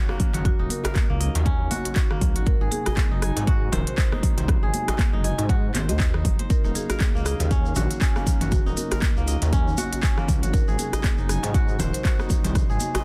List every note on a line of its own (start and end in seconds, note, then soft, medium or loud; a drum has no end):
0.00 2.42 C#3 medium
0.00 6.46 F#3 medium
0.00 2.42 A#3 medium
0.00 1.18 C#4 loud
0.00 0.20 D#4 medium
0.00 10.49 D#4 medium
0.00 0.34 F#4 medium
0.00 0.10 A#4 medium
0.00 0.26 D#5 medium
0.00 0.43 F5 medium
0.09 1.09 A#3 medium
0.09 cross-stick medium
0.09 djembe tone medium
0.09 high conga medium
0.20 kick medium
0.20 open hi-hat medium
0.20 high conga medium
0.20 low conga loud
0.33 0.54 F#1 loud
0.33 1.70 F#4 medium
0.33 closed hi-hat medium
0.33 mid tom medium
0.33 djembe slap medium
0.45 6.46 F#4 medium
0.45 0.60 F#4 loud
0.45 kick loud
0.45 closed hi-hat soft
0.45 low conga medium
0.59 0.68 D#1 loud
0.59 2.22 D#4 medium
0.70 1.42 A#4 loud
0.70 open hi-hat medium
0.70 high conga medium
0.84 2.12 A#4 medium
0.84 cross-stick loud
0.84 closed hi-hat medium
0.84 djembe slap medium
0.84 djembe tone medium
0.84 djembe bass medium
0.95 kick loud
0.95 clap loud
0.95 closed hi-hat soft
0.95 high conga loud
1.10 1.30 C#2 medium
1.10 2.10 A#3 medium
1.20 2.27 D#5 medium
1.20 open hi-hat medium
1.20 djembe tone medium
1.35 1.68 D#2 medium
1.35 closed hi-hat medium
1.35 djembe slap medium
1.45 3.19 C#4 loud
1.45 kick loud
1.45 closed hi-hat soft
1.45 low conga medium
1.71 1.95 F#4 loud
1.71 open hi-hat loud
1.71 djembe tone medium
1.71 high conga loud
1.85 closed hi-hat medium
1.85 djembe tone medium
1.96 2.35 F#4 medium
1.96 kick loud
1.96 clap loud
1.96 closed hi-hat soft
2.11 4.03 A#3 medium
2.11 cross-stick medium
2.11 mid tom medium
2.21 2.37 C#2 medium
2.21 kick medium
2.21 open hi-hat medium
2.21 low conga loud
2.36 2.56 G#1 medium
2.36 3.47 F#4 medium
2.36 closed hi-hat medium
2.36 high conga medium
2.46 6.46 C3 medium
2.46 6.46 G#3 medium
2.46 2.62 A#4 loud
2.46 kick loud
2.46 closed hi-hat soft
2.61 2.70 G#1 loud
2.61 3.97 G#4 medium
2.71 2.81 G#4 medium
2.71 open hi-hat medium
2.71 high conga medium
2.86 2.93 G#4 medium
2.86 3.93 D#5 medium
2.86 cross-stick loud
2.86 closed hi-hat medium
2.86 djembe bass loud
2.97 kick loud
2.97 clap medium
2.97 closed hi-hat soft
2.97 high conga medium
3.11 3.31 F#1 medium
3.11 4.12 D#4 medium
3.22 4.12 G#5 medium
3.22 cross-stick loud
3.22 open hi-hat medium
3.36 3.69 G#2 medium
3.36 closed hi-hat medium
3.36 djembe slap medium
3.47 4.94 F#4 loud
3.47 kick loud
3.47 closed hi-hat soft
3.47 djembe tone medium
3.72 3.84 D#1 loud
3.72 3.84 A#4 medium
3.72 3.97 C5 loud
3.72 open hi-hat medium
3.72 mid tom medium
3.72 djembe slap medium
3.72 djembe tone medium
3.72 djembe bass loud
3.72 low conga medium
3.87 3.99 C5 medium
3.87 closed hi-hat medium
3.98 4.37 C5 medium
3.98 kick loud
3.98 clap loud
3.98 closed hi-hat soft
4.12 5.13 D#4 medium
4.12 cross-stick medium
4.12 djembe tone medium
4.12 high conga medium
4.23 kick medium
4.23 open hi-hat medium
4.23 high conga medium
4.23 low conga loud
4.37 4.57 C2 loud
4.37 5.56 C5 medium
4.37 closed hi-hat medium
4.37 mid tom medium
4.37 djembe slap medium
4.48 kick loud
4.48 cross-stick medium
4.48 closed hi-hat soft
4.48 low conga medium
4.62 4.71 G#1 loud
4.62 5.99 G#4 medium
4.74 open hi-hat medium
4.74 high conga medium
4.88 5.95 D#5 medium
4.88 cross-stick loud
4.88 closed hi-hat medium
4.88 djembe slap medium
4.88 djembe tone loud
4.88 djembe bass medium
4.99 kick loud
4.99 clap loud
4.99 closed hi-hat soft
4.99 high conga loud
5.13 5.33 F#1 medium
5.13 6.14 D#4 medium
5.24 5.39 D#5 medium
5.24 6.14 G#5 medium
5.24 open hi-hat medium
5.24 djembe tone medium
5.38 5.71 G#2 medium
5.38 closed hi-hat medium
5.38 djembe slap medium
5.49 6.95 F#4 loud
5.49 5.64 F#5 loud
5.49 kick loud
5.49 closed hi-hat soft
5.49 low conga medium
5.74 5.90 G#1 medium
5.74 5.99 C5 loud
5.74 clap soft
5.74 open hi-hat medium
5.74 djembe tone medium
5.74 high conga medium
5.89 6.27 D#2 loud
5.89 6.56 D#5 medium
5.89 closed hi-hat medium
5.89 djembe tone medium
6.00 6.39 C5 medium
6.00 kick loud
6.00 clap loud
6.00 closed hi-hat soft
6.14 6.64 D#4 medium
6.14 cross-stick medium
6.14 mid tom medium
6.25 6.37 F#1 loud
6.25 kick medium
6.25 open hi-hat medium
6.25 low conga loud
6.39 7.57 C5 medium
6.39 closed hi-hat medium
6.39 high conga medium
6.50 10.49 C#3 medium
6.50 13.04 F#3 medium
6.50 10.49 A#3 medium
6.50 6.65 A#4 loud
6.50 8.50 F5 medium
6.50 kick loud
6.50 closed hi-hat soft
6.50 shaker medium
6.64 6.73 D#1 loud
6.64 8.27 D#4 medium
6.64 shaker soft
6.75 6.85 G#4 medium
6.75 open hi-hat medium
6.75 high conga medium
6.75 shaker medium
6.90 6.97 G#4 medium
6.90 8.17 A#4 medium
6.90 cross-stick medium
6.90 closed hi-hat medium
6.90 djembe bass medium
6.90 shaker soft
7.00 kick loud
7.00 clap loud
7.00 closed hi-hat soft
7.00 high conga medium
7.00 shaker soft
7.15 7.35 C#2 medium
7.15 8.16 A#3 medium
7.15 shaker soft
7.26 7.41 G#4 loud
7.26 8.33 D#5 medium
7.26 cross-stick medium
7.26 open hi-hat medium
7.26 shaker medium
7.40 7.73 D#2 medium
7.40 closed hi-hat medium
7.40 djembe slap medium
7.40 shaker soft
7.51 8.01 C#4 loud
7.51 kick loud
7.51 closed hi-hat soft
7.51 djembe tone medium
7.51 shaker medium
7.65 shaker soft
7.76 7.88 A#1 loud
7.76 8.41 F#4 loud
7.76 open hi-hat medium
7.76 mid tom medium
7.76 djembe slap medium
7.76 djembe tone medium
7.76 djembe bass medium
7.76 low conga medium
7.76 shaker loud
7.91 closed hi-hat medium
7.91 shaker soft
8.01 9.52 C#4 loud
8.01 kick loud
8.01 clap loud
8.01 closed hi-hat soft
8.01 shaker medium
8.16 9.16 A#3 medium
8.16 cross-stick medium
8.16 djembe tone medium
8.16 high conga medium
8.16 shaker soft
8.26 kick medium
8.26 open hi-hat medium
8.26 high conga medium
8.26 low conga loud
8.26 shaker medium
8.41 8.61 F#1 loud
8.41 9.78 F#4 medium
8.41 closed hi-hat medium
8.41 mid tom loud
8.41 djembe slap medium
8.41 shaker soft
8.52 13.04 F#4 medium
8.52 8.67 F#4 loud
8.52 kick loud
8.52 closed hi-hat soft
8.52 low conga medium
8.52 shaker medium
8.66 8.75 D#1 loud
8.66 10.29 D#4 medium
8.66 shaker soft
8.77 9.48 A#4 loud
8.77 open hi-hat medium
8.77 high conga medium
8.77 shaker medium
8.91 10.19 A#4 medium
8.91 cross-stick medium
8.91 closed hi-hat medium
8.91 djembe slap medium
8.91 djembe tone medium
8.91 djembe bass medium
8.91 shaker soft
9.02 kick loud
9.02 clap loud
9.02 closed hi-hat soft
9.02 high conga medium
9.02 shaker soft
9.17 9.37 C#2 medium
9.17 10.17 A#3 medium
9.17 shaker soft
9.27 10.35 D#5 medium
9.27 open hi-hat medium
9.27 djembe tone medium
9.27 shaker medium
9.42 9.75 D#2 medium
9.42 closed hi-hat medium
9.42 djembe slap medium
9.42 shaker soft
9.53 10.03 C#4 loud
9.53 kick loud
9.53 closed hi-hat soft
9.53 low conga medium
9.53 shaker medium
9.68 shaker soft
9.78 10.42 F#4 loud
9.78 open hi-hat medium
9.78 high conga medium
9.78 djembe tone medium
9.78 shaker loud
9.92 closed hi-hat medium
9.92 djembe tone medium
9.92 shaker soft
10.03 11.77 C#4 loud
10.03 kick loud
10.03 clap loud
10.03 closed hi-hat soft
10.03 shaker medium
10.17 12.10 A#3 medium
10.17 cross-stick medium
10.17 mid tom medium
10.17 shaker soft
10.28 10.44 C#2 medium
10.28 kick medium
10.28 open hi-hat medium
10.28 low conga loud
10.28 shaker medium
10.43 10.63 G#1 medium
10.43 11.54 F#4 medium
10.43 closed hi-hat medium
10.43 high conga medium
10.43 shaker soft
10.53 13.04 C3 medium
10.53 13.04 G#3 medium
10.53 13.04 D#4 medium
10.53 10.69 A#4 loud
10.53 kick loud
10.53 closed hi-hat soft
10.53 shaker soft
10.68 10.77 G#1 loud
10.68 12.04 G#4 medium
10.68 shaker soft
10.79 10.88 G#4 loud
10.79 open hi-hat medium
10.79 high conga medium
10.79 shaker loud
10.93 11.00 G#4 medium
10.93 12.00 D#5 medium
10.93 cross-stick medium
10.93 closed hi-hat medium
10.93 djembe bass loud
10.93 shaker soft
11.04 kick loud
11.04 clap loud
11.04 closed hi-hat soft
11.04 high conga medium
11.04 shaker soft
11.18 11.38 F#1 medium
11.18 12.19 D#4 medium
11.18 shaker soft
11.29 12.19 G#5 medium
11.29 cross-stick medium
11.29 open hi-hat medium
11.29 shaker medium
11.43 11.77 G#2 medium
11.43 closed hi-hat medium
11.43 djembe slap medium
11.43 shaker soft
11.54 12.05 F#4 loud
11.54 kick loud
11.54 closed hi-hat soft
11.54 djembe tone medium
11.54 shaker medium
11.68 shaker soft
11.79 11.91 D#1 loud
11.79 11.91 A#4 medium
11.79 12.44 C5 loud
11.79 open hi-hat medium
11.79 mid tom medium
11.79 djembe slap medium
11.79 djembe tone medium
11.79 low conga loud
11.79 djembe bass loud
11.79 shaker medium
11.93 12.05 C5 loud
11.93 closed hi-hat medium
11.93 shaker soft
12.05 13.04 F#4 loud
12.05 kick loud
12.05 clap loud
12.05 closed hi-hat soft
12.05 shaker soft
12.19 13.04 D#4 medium
12.19 cross-stick medium
12.19 high conga medium
12.19 djembe tone medium
12.19 shaker soft
12.30 kick medium
12.30 open hi-hat medium
12.30 high conga medium
12.30 low conga loud
12.30 shaker medium
12.44 12.64 C2 loud
12.44 13.04 C5 medium
12.44 closed hi-hat medium
12.44 mid tom medium
12.44 djembe slap medium
12.44 shaker soft
12.55 kick loud
12.55 cross-stick medium
12.55 closed hi-hat soft
12.55 low conga medium
12.55 shaker medium
12.70 12.79 G#1 loud
12.70 13.04 G#4 medium
12.70 shaker soft
12.80 open hi-hat medium
12.80 high conga medium
12.80 shaker loud
12.95 13.04 D#5 medium
12.95 cross-stick medium
12.95 closed hi-hat medium
12.95 djembe slap medium
12.95 djembe tone medium
12.95 djembe bass medium
12.95 shaker soft